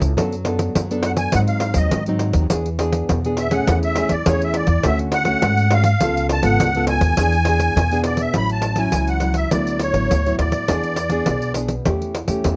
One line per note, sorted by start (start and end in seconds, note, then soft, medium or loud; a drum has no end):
0.00 0.13 C#2 medium
0.00 0.13 C#3 medium
0.00 0.12 C#4 medium
0.00 0.12 E4 medium
0.00 0.13 A4 medium
0.00 pandeiro medium
0.17 0.66 F#2 loud
0.17 0.72 F#3 medium
0.17 0.34 B3 medium
0.17 0.34 D4 medium
0.17 0.35 A4 medium
0.17 pandeiro medium
0.32 pandeiro soft
0.45 0.85 B3 medium
0.45 0.85 D4 medium
0.45 0.85 A4 medium
0.45 pandeiro medium
0.59 pandeiro medium
0.75 1.25 F#2 medium
0.75 1.31 F#3 medium
0.75 pandeiro medium
0.91 1.30 B3 medium
0.91 1.30 D4 medium
0.91 1.30 A4 medium
0.91 pandeiro soft
1.03 1.12 F#5 medium
1.03 pandeiro medium
1.17 1.33 G#5 loud
1.17 pandeiro medium
1.32 1.71 G#2 medium
1.32 1.89 G#2 medium
1.32 1.73 F#3 medium
1.32 1.73 C4 medium
1.32 1.73 D#4 medium
1.32 1.41 F#5 loud
1.32 pandeiro medium
1.47 1.78 F5 medium
1.47 pandeiro soft
1.60 pandeiro medium
1.74 1.89 D#2 medium
1.74 2.01 F#3 medium
1.74 2.02 C4 medium
1.74 2.01 D#4 medium
1.74 2.04 D#5 medium
1.74 pandeiro medium
1.91 2.29 G#2 medium
1.91 2.48 D#3 medium
1.91 pandeiro medium
2.06 2.46 F#3 medium
2.06 2.47 C4 medium
2.06 2.47 D#4 medium
2.06 pandeiro soft
2.19 pandeiro medium
2.33 2.47 D#2 medium
2.33 pandeiro medium
2.50 3.01 E2 loud
2.50 3.06 E3 medium
2.50 2.68 B3 medium
2.50 2.68 D4 medium
2.50 2.68 G#4 medium
2.50 pandeiro medium
2.66 pandeiro soft
2.79 3.19 B3 medium
2.79 3.19 D4 medium
2.79 3.19 G#4 medium
2.79 pandeiro medium
2.92 pandeiro medium
3.09 3.59 E2 medium
3.09 3.65 B2 medium
3.09 pandeiro medium
3.25 3.49 B3 medium
3.25 3.49 D4 medium
3.25 3.49 G#4 medium
3.25 pandeiro soft
3.37 3.54 E5 medium
3.37 pandeiro medium
3.51 3.96 A3 medium
3.51 3.96 C#4 medium
3.51 3.97 G#4 medium
3.51 3.79 F#5 medium
3.51 pandeiro medium
3.67 4.05 E2 medium
3.67 4.23 E3 medium
3.67 pandeiro medium
3.83 4.13 E5 medium
3.83 pandeiro soft
3.95 4.14 A3 medium
3.95 4.14 C#4 medium
3.95 4.14 G#4 medium
3.95 pandeiro medium
4.09 4.23 E2 medium
4.09 4.26 D5 medium
4.09 pandeiro medium
4.26 4.63 E2 medium
4.26 4.82 E3 medium
4.26 4.64 A3 medium
4.26 4.64 C#4 medium
4.26 4.64 G#4 medium
4.26 4.42 C#5 medium
4.26 pandeiro medium
4.42 4.56 E5 medium
4.42 pandeiro soft
4.54 4.86 D5 medium
4.54 pandeiro medium
4.67 4.81 E2 medium
4.67 pandeiro medium
4.83 5.34 D2 loud
4.83 5.40 D3 medium
4.83 5.24 A3 medium
4.83 5.24 C#4 medium
4.83 5.24 F#4 medium
4.83 4.99 E5 medium
4.83 pandeiro medium
4.99 pandeiro soft
5.12 5.74 F#5 loud
5.12 pandeiro medium
5.25 5.66 A3 medium
5.25 5.67 C#4 medium
5.25 5.67 F#4 medium
5.25 pandeiro medium
5.42 5.92 G#2 medium
5.42 pandeiro medium
5.57 pandeiro soft
5.71 5.90 A3 medium
5.71 5.91 C#4 medium
5.71 5.91 F#4 medium
5.71 6.27 F5 loud
5.71 pandeiro medium
5.84 pandeiro medium
6.01 6.38 C#2 medium
6.01 6.57 C#3 medium
6.01 6.41 B3 medium
6.01 6.41 F4 medium
6.01 6.41 A4 medium
6.01 pandeiro medium
6.17 pandeiro soft
6.29 6.45 A5 loud
6.29 pandeiro medium
6.43 6.56 G#1 medium
6.43 6.69 B3 medium
6.43 6.69 F4 medium
6.43 6.69 A4 medium
6.43 6.85 F#5 loud
6.43 pandeiro medium
6.60 6.97 C#2 medium
6.60 7.15 G#2 medium
6.60 pandeiro medium
6.75 7.14 B3 medium
6.75 7.14 F4 medium
6.75 7.15 A4 medium
6.75 pandeiro soft
6.87 8.02 G#5 loud
6.87 pandeiro medium
7.01 7.14 D#2 loud
7.01 pandeiro medium
7.17 7.68 E2 loud
7.17 7.74 E3 medium
7.17 7.35 B3 medium
7.17 7.36 D4 medium
7.17 7.36 G#4 medium
7.17 pandeiro medium
7.32 pandeiro soft
7.45 7.75 B3 medium
7.45 7.75 D4 medium
7.45 7.75 G#4 medium
7.45 pandeiro medium
7.60 pandeiro medium
7.76 8.26 E2 medium
7.76 8.33 B2 medium
7.76 pandeiro medium
7.91 8.31 B3 medium
7.91 8.31 D4 medium
7.91 8.31 G#4 medium
7.91 pandeiro soft
8.04 8.21 D5 medium
8.04 pandeiro medium
8.17 8.36 E5 medium
8.17 pandeiro medium
8.34 8.84 A1 medium
8.34 8.91 A2 medium
8.34 8.75 F#3 medium
8.34 8.75 C#4 soft
8.34 8.75 E4 medium
8.34 8.50 B5 loud
8.34 pandeiro medium
8.50 8.81 A5 medium
8.50 pandeiro soft
8.62 pandeiro medium
8.76 9.18 F#3 medium
8.76 9.18 C#4 medium
8.76 9.18 E4 medium
8.76 9.09 G#5 medium
8.76 pandeiro medium
8.92 9.43 C#2 medium
8.92 9.50 E3 medium
8.92 pandeiro medium
9.07 9.35 F#5 medium
9.07 pandeiro soft
9.20 9.47 F#3 medium
9.20 9.47 C#4 medium
9.20 9.48 E4 medium
9.20 pandeiro medium
9.34 9.50 E5 medium
9.34 pandeiro medium
9.51 9.89 D2 medium
9.51 10.08 D3 medium
9.51 9.91 F#3 medium
9.51 9.92 B3 soft
9.51 9.92 E4 medium
9.51 9.81 D5 medium
9.51 pandeiro medium
9.67 pandeiro soft
9.79 10.36 C#5 medium
9.79 pandeiro medium
9.93 10.07 A1 medium
9.93 10.20 F#3 medium
9.93 10.20 B3 medium
9.93 10.20 E4 medium
9.93 pandeiro medium
10.10 10.35 D2 medium
10.10 10.66 A2 medium
10.10 pandeiro medium
10.26 10.65 F#3 medium
10.26 10.65 B3 medium
10.26 10.65 E4 medium
10.26 pandeiro soft
10.39 10.52 D#2 medium
10.39 11.53 D5 medium
10.39 pandeiro medium
10.52 pandeiro medium
10.68 11.19 E2 medium
10.68 11.25 E3 medium
10.68 10.97 B3 medium
10.68 10.97 D4 medium
10.68 10.97 G#4 medium
10.68 pandeiro medium
10.83 pandeiro soft
10.96 pandeiro medium
11.10 11.51 B3 medium
11.10 11.51 D4 medium
11.10 11.52 G#4 medium
11.10 pandeiro medium
11.26 11.77 B1 medium
11.26 11.84 B2 medium
11.26 pandeiro medium
11.42 pandeiro soft
11.54 11.74 B3 soft
11.54 11.74 D4 soft
11.54 11.74 G#4 medium
11.54 pandeiro medium
11.68 pandeiro medium
11.85 12.24 E2 medium
11.85 12.42 E3 medium
11.85 12.14 A3 medium
11.85 12.14 C#4 medium
11.85 12.14 G4 medium
11.85 pandeiro medium
12.02 pandeiro soft
12.15 pandeiro medium
12.28 12.41 E2 medium
12.28 12.54 A3 medium
12.28 12.54 C#4 medium
12.28 12.55 G4 medium
12.28 pandeiro medium
12.44 12.56 E2 loud
12.44 12.56 E3 medium
12.44 pandeiro medium